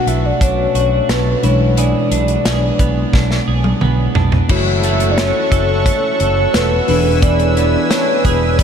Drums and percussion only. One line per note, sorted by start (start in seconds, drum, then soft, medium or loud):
0.07 closed hi-hat medium
0.41 kick loud
0.41 closed hi-hat medium
0.75 closed hi-hat medium
1.09 snare loud
1.09 closed hi-hat medium
1.43 closed hi-hat medium
1.77 closed hi-hat medium
2.12 closed hi-hat medium
2.28 closed hi-hat medium
2.45 snare loud
2.45 closed hi-hat loud
2.79 kick medium
2.79 closed hi-hat medium
3.13 kick loud
3.13 snare medium
3.31 snare soft
3.64 high tom medium
3.81 mid tom medium
4.15 floor tom medium
4.32 floor tom medium
4.49 kick loud
4.49 crash medium
4.83 closed hi-hat medium
5.00 closed hi-hat medium
5.18 snare loud
5.18 closed hi-hat loud
5.52 kick medium
5.52 closed hi-hat medium
5.86 kick loud
5.86 closed hi-hat medium
6.20 closed hi-hat medium
6.54 snare loud
6.54 closed hi-hat medium
6.88 open hi-hat medium
7.22 kick loud
7.22 closed hi-hat medium
7.40 closed hi-hat soft
7.57 closed hi-hat medium
7.91 snare loud
7.91 closed hi-hat loud
8.25 kick medium
8.25 closed hi-hat medium
8.59 kick loud
8.59 closed hi-hat loud